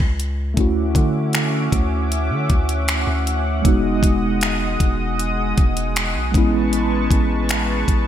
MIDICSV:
0, 0, Header, 1, 5, 480
1, 0, Start_track
1, 0, Tempo, 769231
1, 357, Time_signature, 4, 2, 24, 8
1, 5038, End_track
2, 0, Start_track
2, 0, Title_t, "Analog synth pad"
2, 0, Program_c, 0, 89
2, 353, Note_on_c, 0, 61, 81
2, 354, Note_on_c, 0, 76, 74
2, 354, Note_on_c, 0, 78, 71
2, 355, Note_on_c, 0, 86, 87
2, 2256, Note_off_c, 0, 61, 0
2, 2256, Note_off_c, 0, 76, 0
2, 2257, Note_off_c, 0, 86, 0
2, 2275, Note_on_c, 0, 75, 77
2, 2275, Note_on_c, 0, 87, 84
2, 2276, Note_on_c, 0, 56, 83
2, 3930, Note_off_c, 0, 78, 0
2, 3939, Note_off_c, 0, 75, 0
2, 3939, Note_off_c, 0, 87, 0
2, 3958, Note_on_c, 0, 81, 67
2, 3959, Note_on_c, 0, 71, 69
2, 3960, Note_on_c, 0, 85, 87
2, 5038, Note_off_c, 0, 56, 0
2, 5038, Note_off_c, 0, 71, 0
2, 5038, Note_off_c, 0, 81, 0
2, 5038, Note_off_c, 0, 85, 0
2, 5038, End_track
3, 0, Start_track
3, 0, Title_t, "Tine electric piano"
3, 0, Program_c, 1, 4
3, 338, Note_on_c, 1, 57, 76
3, 351, Note_on_c, 1, 61, 65
3, 364, Note_on_c, 1, 64, 66
3, 376, Note_on_c, 1, 66, 79
3, 466, Control_c, 1, 64, 127
3, 2242, Note_off_c, 1, 57, 0
3, 2249, Note_off_c, 1, 61, 0
3, 2255, Note_off_c, 1, 64, 0
3, 2260, Note_on_c, 1, 56, 76
3, 2262, Note_off_c, 1, 66, 0
3, 2273, Note_on_c, 1, 59, 65
3, 2285, Control_c, 1, 64, 0
3, 2286, Note_on_c, 1, 63, 65
3, 2298, Note_on_c, 1, 66, 76
3, 2394, Control_c, 1, 64, 127
3, 3924, Note_off_c, 1, 56, 0
3, 3930, Note_off_c, 1, 59, 0
3, 3936, Note_off_c, 1, 63, 0
3, 3942, Note_on_c, 1, 56, 73
3, 3943, Note_off_c, 1, 66, 0
3, 3955, Note_on_c, 1, 59, 69
3, 3966, Control_c, 1, 64, 0
3, 3967, Note_on_c, 1, 61, 67
3, 3980, Note_on_c, 1, 64, 85
3, 4073, Control_c, 1, 64, 127
3, 5038, Note_off_c, 1, 56, 0
3, 5038, Note_off_c, 1, 59, 0
3, 5038, Note_off_c, 1, 61, 0
3, 5038, Note_off_c, 1, 64, 0
3, 5038, End_track
4, 0, Start_track
4, 0, Title_t, "808-style bass"
4, 0, Program_c, 2, 38
4, 0, Note_on_c, 2, 37, 103
4, 344, Note_off_c, 2, 37, 0
4, 357, Note_on_c, 2, 38, 113
4, 587, Note_off_c, 2, 38, 0
4, 592, Note_on_c, 2, 50, 96
4, 1055, Note_off_c, 2, 50, 0
4, 1075, Note_on_c, 2, 38, 104
4, 1436, Note_on_c, 2, 50, 98
4, 1446, Note_off_c, 2, 38, 0
4, 1551, Note_off_c, 2, 50, 0
4, 1560, Note_on_c, 2, 38, 100
4, 1904, Note_off_c, 2, 38, 0
4, 1917, Note_on_c, 2, 38, 97
4, 2263, Note_off_c, 2, 38, 0
4, 2277, Note_on_c, 2, 28, 111
4, 2507, Note_off_c, 2, 28, 0
4, 2513, Note_on_c, 2, 28, 100
4, 2976, Note_off_c, 2, 28, 0
4, 2997, Note_on_c, 2, 28, 100
4, 3458, Note_off_c, 2, 28, 0
4, 3480, Note_on_c, 2, 28, 99
4, 3837, Note_on_c, 2, 35, 99
4, 3847, Note_off_c, 2, 28, 0
4, 3951, Note_off_c, 2, 35, 0
4, 3959, Note_on_c, 2, 33, 99
4, 4419, Note_off_c, 2, 33, 0
4, 4434, Note_on_c, 2, 33, 102
4, 4896, Note_off_c, 2, 33, 0
4, 4918, Note_on_c, 2, 33, 98
4, 5038, Note_off_c, 2, 33, 0
4, 5038, End_track
5, 0, Start_track
5, 0, Title_t, "Drums"
5, 0, Note_on_c, 9, 36, 91
5, 63, Note_off_c, 9, 36, 0
5, 122, Note_on_c, 9, 42, 51
5, 185, Note_off_c, 9, 42, 0
5, 357, Note_on_c, 9, 36, 104
5, 357, Note_on_c, 9, 42, 66
5, 419, Note_off_c, 9, 36, 0
5, 419, Note_off_c, 9, 42, 0
5, 592, Note_on_c, 9, 36, 84
5, 597, Note_on_c, 9, 42, 67
5, 655, Note_off_c, 9, 36, 0
5, 659, Note_off_c, 9, 42, 0
5, 831, Note_on_c, 9, 42, 64
5, 840, Note_on_c, 9, 26, 105
5, 893, Note_off_c, 9, 42, 0
5, 902, Note_off_c, 9, 26, 0
5, 1076, Note_on_c, 9, 36, 79
5, 1078, Note_on_c, 9, 42, 62
5, 1138, Note_off_c, 9, 36, 0
5, 1140, Note_off_c, 9, 42, 0
5, 1321, Note_on_c, 9, 42, 55
5, 1384, Note_off_c, 9, 42, 0
5, 1558, Note_on_c, 9, 42, 51
5, 1559, Note_on_c, 9, 36, 89
5, 1620, Note_off_c, 9, 42, 0
5, 1622, Note_off_c, 9, 36, 0
5, 1678, Note_on_c, 9, 42, 50
5, 1741, Note_off_c, 9, 42, 0
5, 1798, Note_on_c, 9, 42, 66
5, 1801, Note_on_c, 9, 26, 108
5, 1860, Note_off_c, 9, 42, 0
5, 1863, Note_off_c, 9, 26, 0
5, 2041, Note_on_c, 9, 42, 52
5, 2103, Note_off_c, 9, 42, 0
5, 2277, Note_on_c, 9, 36, 103
5, 2278, Note_on_c, 9, 42, 71
5, 2340, Note_off_c, 9, 36, 0
5, 2340, Note_off_c, 9, 42, 0
5, 2513, Note_on_c, 9, 36, 85
5, 2518, Note_on_c, 9, 42, 69
5, 2575, Note_off_c, 9, 36, 0
5, 2580, Note_off_c, 9, 42, 0
5, 2754, Note_on_c, 9, 42, 64
5, 2763, Note_on_c, 9, 26, 108
5, 2816, Note_off_c, 9, 42, 0
5, 2825, Note_off_c, 9, 26, 0
5, 2996, Note_on_c, 9, 36, 82
5, 2997, Note_on_c, 9, 42, 62
5, 3059, Note_off_c, 9, 36, 0
5, 3060, Note_off_c, 9, 42, 0
5, 3241, Note_on_c, 9, 42, 58
5, 3304, Note_off_c, 9, 42, 0
5, 3479, Note_on_c, 9, 42, 53
5, 3480, Note_on_c, 9, 36, 93
5, 3541, Note_off_c, 9, 42, 0
5, 3543, Note_off_c, 9, 36, 0
5, 3599, Note_on_c, 9, 42, 52
5, 3661, Note_off_c, 9, 42, 0
5, 3720, Note_on_c, 9, 42, 66
5, 3723, Note_on_c, 9, 26, 110
5, 3782, Note_off_c, 9, 42, 0
5, 3786, Note_off_c, 9, 26, 0
5, 3958, Note_on_c, 9, 36, 99
5, 3963, Note_on_c, 9, 42, 52
5, 4021, Note_off_c, 9, 36, 0
5, 4025, Note_off_c, 9, 42, 0
5, 4199, Note_on_c, 9, 42, 71
5, 4261, Note_off_c, 9, 42, 0
5, 4434, Note_on_c, 9, 36, 85
5, 4439, Note_on_c, 9, 42, 67
5, 4496, Note_off_c, 9, 36, 0
5, 4501, Note_off_c, 9, 42, 0
5, 4675, Note_on_c, 9, 42, 67
5, 4684, Note_on_c, 9, 26, 111
5, 4737, Note_off_c, 9, 42, 0
5, 4746, Note_off_c, 9, 26, 0
5, 4917, Note_on_c, 9, 36, 76
5, 4920, Note_on_c, 9, 42, 65
5, 4980, Note_off_c, 9, 36, 0
5, 4982, Note_off_c, 9, 42, 0
5, 5038, End_track
0, 0, End_of_file